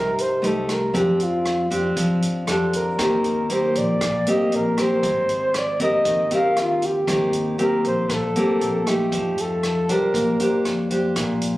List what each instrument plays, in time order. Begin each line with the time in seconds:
Already playing: upright bass C2, nylon-string guitar C3 D#4 G4, flugelhorn A#4
0.18 flugelhorn C5, closed hi-hat
0.42 upright bass C2, nylon-string guitar A3 D#4 G4, closed hi-hat
0.46 flugelhorn A4
0.69 flugelhorn A#4, kick, cross-stick, closed hi-hat
0.93 upright bass F2, nylon-string guitar F3 C4 D4 G4, flugelhorn G4, kick, closed hi-hat
1.20 flugelhorn F4, closed hi-hat
1.45 cross-stick, closed hi-hat
1.70 upright bass F2, nylon-string guitar C4 D4 G4, kick, closed hi-hat
1.97 upright bass F2, nylon-string guitar F3, kick, closed hi-hat
2.22 closed hi-hat
2.47 upright bass F2, nylon-string guitar C4 D4 G4, flugelhorn A4, cross-stick, closed hi-hat
2.73 flugelhorn A#4, kick, closed hi-hat
2.98 upright bass D#2, nylon-string guitar D#3 A#3 C4 G4, kick, cross-stick, closed hi-hat
3.24 closed hi-hat
3.49 nylon-string guitar A#3 C4 G4, flugelhorn C5, closed hi-hat
3.75 upright bass A#1, flugelhorn D5, kick, closed hi-hat
4.01 upright bass A#1, nylon-string guitar A#2, kick, cross-stick, closed hi-hat
4.27 nylon-string guitar A#3 C4 G4, flugelhorn D#5, closed hi-hat
4.52 upright bass A#1, flugelhorn A#4, closed hi-hat
4.77 nylon-string guitar C4 G4 A#4, flugelhorn C5, kick, cross-stick, closed hi-hat
5.03 upright bass G#1, nylon-string guitar G#3, kick, closed hi-hat
5.29 closed hi-hat
5.54 flugelhorn D5, cross-stick, closed hi-hat
5.80 upright bass D#2, nylon-string guitar C4 G4 A#4, flugelhorn D#5, kick, closed hi-hat
6.05 upright bass D#2, nylon-string guitar D#3, kick, closed hi-hat
6.31 nylon-string guitar C4 G4 A#4, flugelhorn F5, closed hi-hat
6.57 upright bass D#2, flugelhorn F4, cross-stick, closed hi-hat
6.82 flugelhorn G4, kick, closed hi-hat
7.07 upright bass D#2, nylon-string guitar D#3 A#3 C4 G4, kick, cross-stick, closed hi-hat
7.33 closed hi-hat
7.58 nylon-string guitar A#3 C4 G4, flugelhorn A#4, closed hi-hat
7.84 upright bass A#1, flugelhorn C5, kick, closed hi-hat
8.09 upright bass A#1, nylon-string guitar A#2, flugelhorn A4, kick, cross-stick, closed hi-hat
8.36 nylon-string guitar A#3 C4 G4, closed hi-hat
8.61 upright bass A#1, closed hi-hat
8.86 nylon-string guitar A3 D#4 G4, flugelhorn G4, kick, cross-stick, closed hi-hat
9.12 upright bass F2, nylon-string guitar F3, kick, closed hi-hat
9.38 flugelhorn A4, closed hi-hat
9.63 cross-stick, closed hi-hat
9.89 upright bass C2, nylon-string guitar D4 G4 C5, flugelhorn A#4, kick, closed hi-hat
10.14 upright bass A#1, nylon-string guitar A#3, kick, closed hi-hat
10.40 nylon-string guitar D4 G4 C5, closed hi-hat
10.65 upright bass F2, cross-stick, closed hi-hat
10.90 nylon-string guitar D4 G4 C5, kick, closed hi-hat
11.16 upright bass A#1, nylon-string guitar A#2, kick, cross-stick, closed hi-hat
11.42 closed hi-hat